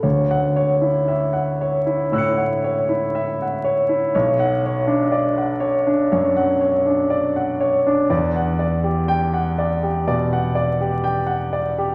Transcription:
<<
  \new Staff \with { instrumentName = "Grand piano" } { \time 4/4 \key d \major \tempo 4 = 60 << { r16 fis''8 r4 r16 <e''' fis''' cis''''>2 | r16 fis''8 r2. r16 | r4 g''8 r2 r8 | } \\ { cis''8 cis''16 e'16 e''16 fis''16 cis''16 e'16 cis''16 fis''16 cis''16 e'16 e''16 fis''16 cis''16 e'16 | cis''8 cis''16 d'16 d''16 fis''16 cis''16 d'16 cis''16 fis''16 cis''16 d'16 d''16 fis''16 cis''16 d'16 | d''16 fis''16 d''16 g'8 fis''16 d''16 g'16 d''16 fis''16 d''16 g'16 g''16 fis''16 d''16 g'16 | } >> }
  \new Staff \with { instrumentName = "Grand piano" } { \clef bass \time 4/4 \key d \major d,2 a,8 r4. | b,,2 fis,8 r4. | e,2 b,8 r4. | }
>>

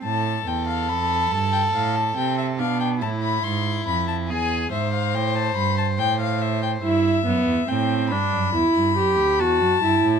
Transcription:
<<
  \new Staff \with { instrumentName = "Violin" } { \time 4/4 \key a \minor \tempo 4 = 70 a''8 g''16 f''16 b''8 a''16 g''16 f''16 a''16 g''16 e''16 f''16 g''16 a''16 b''16 | c'''8 b''16 a''16 gis''8 e''16 f''16 g''16 a''16 b''16 a''16 g''16 f''16 e''16 g''16 | e''4 g''8 b''4. a''4 | }
  \new Staff \with { instrumentName = "Violin" } { \time 4/4 \key a \minor a'2. d'8 e'8~ | e'4 gis'8 c''2~ c''8 | r1 | }
  \new Staff \with { instrumentName = "Viola" } { \time 4/4 \key a \minor r1 | r1 | e'8 b8 c'8 d'8 e'8 g'8 fis'8 e'8 | }
  \new Staff \with { instrumentName = "Cello" } { \clef bass \time 4/4 \key a \minor a,8 e,8 f,8 g,8 a,8 c8 b,8 a,8 | gis,8 f,8 e,8 gis,8 a,8 g,8 a,4 | g,8 fis,16 e,16 a,8 g,16 fis,16 e,16 g,16 fis,16 d,16 e,16 fis,16 g,16 a,16 | }
>>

